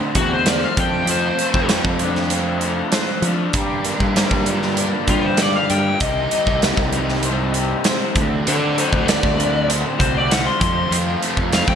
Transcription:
Already playing: overdriven electric guitar D3 F#3 A3 C4 D4 F#4 C5
0.15 picked electric bass E2, lead electric guitar F#4, overdriven electric guitar F#4, kick, closed hi-hat
0.33 lead electric guitar C5
0.46 overdriven electric guitar C5, lead electric guitar D5, snare, closed hi-hat
0.64 lead electric guitar F5
0.76 picked electric bass F2, overdriven electric guitar F3 A3 C4 F4 A4, lead electric guitar G5, kick, closed hi-hat
1.05 picked electric bass F2, overdriven electric guitar F3, closed hi-hat
1.11 lead electric guitar C5
1.39 overdriven electric guitar A3, closed hi-hat
1.54 picked electric bass F2, kick
1.69 overdriven electric guitar A3, snare, closed hi-hat
1.84 picked electric bass F2, kick
1.99 overdriven electric guitar D4, closed hi-hat
2.16 snare
2.30 overdriven electric guitar C5, closed hi-hat
2.61 overdriven electric guitar A4, closed hi-hat
2.92 overdriven electric guitar C5, snare, closed hi-hat
3.22 picked electric bass F3, overdriven electric guitar D4, closed hi-hat
3.53 overdriven electric guitar G2 D3 G3 A#3 D4 A#4, picked electric bass G2, kick, closed hi-hat
3.84 overdriven electric guitar A#3, closed hi-hat
4.00 picked electric bass G2, kick
4.16 overdriven electric guitar A#3, snare, closed hi-hat
4.31 picked electric bass G2, kick
4.46 overdriven electric guitar F4, closed hi-hat
4.62 snare
4.77 overdriven electric guitar D5, closed hi-hat
5.08 picked electric bass G2, lead electric guitar F4, overdriven electric guitar G4, kick, closed hi-hat
5.25 lead electric guitar C5
5.37 lead electric guitar D5, snare, closed hi-hat
5.42 overdriven electric guitar D5
5.55 lead electric guitar F5
5.70 picked electric bass G2, overdriven electric guitar F4, lead electric guitar G5, closed hi-hat
5.99 picked electric bass C2, overdriven electric guitar C3 G3 C4 D#4 G4, lead electric guitar D#5, kick, closed hi-hat
6.31 overdriven electric guitar G3, closed hi-hat
6.46 picked electric bass C2, kick
6.62 overdriven electric guitar A#3, snare, closed hi-hat
6.77 picked electric bass C2, kick
6.93 overdriven electric guitar D#4, closed hi-hat
7.09 snare
7.23 overdriven electric guitar C5, closed hi-hat
7.54 overdriven electric guitar G4, closed hi-hat
7.84 overdriven electric guitar C5, snare, closed hi-hat
8.15 picked electric bass D2, overdriven electric guitar D3 A3 C4 F#4, kick, closed hi-hat
8.46 overdriven electric guitar D3, picked electric bass D3, lead electric guitar A4 D5, closed hi-hat
8.75 overdriven electric guitar F#3, lead electric guitar A4 C5, closed hi-hat
8.93 picked electric bass D2, kick
9.05 overdriven electric guitar A3, lead electric guitar D5, snare, closed hi-hat
9.23 picked electric bass D2, kick
9.37 overdriven electric guitar D4, closed hi-hat
9.68 overdriven electric guitar C5, closed hi-hat
9.99 picked electric bass C2, overdriven electric guitar F#4, lead electric guitar C5, kick, closed hi-hat
10.17 lead electric guitar D5
10.30 overdriven electric guitar C5, lead electric guitar F#5, snare, closed hi-hat
10.47 lead electric guitar C6
10.59 picked electric bass F2, overdriven electric guitar F3 A3 C4 F4, lead electric guitar C6, kick, closed hi-hat
10.90 picked electric bass F2, overdriven electric guitar F3, closed hi-hat
11.22 overdriven electric guitar A3, closed hi-hat
11.37 picked electric bass F2, kick
11.52 overdriven electric guitar A3, lead electric guitar F5, snare, closed hi-hat
11.68 picked electric bass F2, lead electric guitar G5, kick

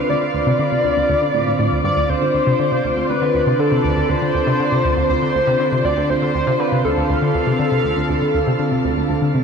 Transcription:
Already playing: analog synth pad D3 C4 F4 F5
0.09 synth arpeggio sound D2, analog synth lead D5
0.22 synth arpeggio sound D3
0.34 synth arpeggio sound D2
0.47 synth arpeggio sound C3
0.59 synth arpeggio sound D3
0.72 synth arpeggio sound C3
0.84 synth arpeggio sound D2
0.97 synth arpeggio sound D2
1.09 synth arpeggio sound D2
1.22 synth arpeggio sound D3
1.34 synth arpeggio sound A2
1.47 synth arpeggio sound A2
1.59 synth arpeggio sound A2
1.72 synth arpeggio sound D2
1.84 synth arpeggio sound G2, analog synth lead D5
1.97 synth arpeggio sound D2
2.09 synth arpeggio sound D2, analog synth lead C5
2.22 synth arpeggio sound D3
2.34 synth arpeggio sound D2, analog synth pad D5
2.47 synth arpeggio sound C3
2.59 synth arpeggio sound D3
2.72 synth arpeggio sound C3
2.84 synth arpeggio sound D2
2.97 synth arpeggio sound D2
3.09 synth arpeggio sound D2, analog synth lead B4
3.22 synth arpeggio sound D3
3.34 synth arpeggio sound D2
3.47 synth arpeggio sound C3
3.53 analog synth lead B4
3.59 synth arpeggio sound D3, analog synth lead A4
3.72 synth arpeggio sound C3
3.84 synth arpeggio sound D2
3.97 synth arpeggio sound D2
4.10 synth arpeggio sound D2, analog synth lead C5
4.22 synth arpeggio sound D3
4.35 synth arpeggio sound D2
4.47 synth arpeggio sound C3
4.60 synth arpeggio sound D3
4.72 synth arpeggio sound C3
4.85 synth arpeggio sound D2
4.97 synth arpeggio sound D2
5.10 synth arpeggio sound D2, analog synth lead C5
5.22 synth arpeggio sound D3
5.35 synth arpeggio sound D2
5.47 synth arpeggio sound C3
5.60 synth arpeggio sound D3
5.72 synth arpeggio sound C3
5.85 synth arpeggio sound D2, analog synth lead D5
5.97 synth arpeggio sound D2
6.10 synth arpeggio sound D2, analog synth lead C5
6.22 synth arpeggio sound D3
6.35 synth arpeggio sound D2, analog synth pad F5
6.47 synth arpeggio sound C3
6.60 synth arpeggio sound D3, analog synth lead B4
6.72 synth arpeggio sound C3
6.84 synth arpeggio sound D2, analog synth lead A4
6.97 synth arpeggio sound D2
7.09 synth arpeggio sound D2
7.22 synth arpeggio sound D3
7.34 synth arpeggio sound D2
7.47 synth arpeggio sound C3
7.59 synth arpeggio sound D3
7.72 synth arpeggio sound C3
7.84 synth arpeggio sound D2
7.97 synth arpeggio sound D2
8.09 synth arpeggio sound D2
8.22 synth arpeggio sound D3
8.34 synth arpeggio sound D2
8.47 synth arpeggio sound C3
8.59 synth arpeggio sound D3
8.72 synth arpeggio sound C3
8.84 synth arpeggio sound D2
8.97 synth arpeggio sound D2
9.09 synth arpeggio sound D2
9.22 synth arpeggio sound D3
9.34 synth arpeggio sound C3

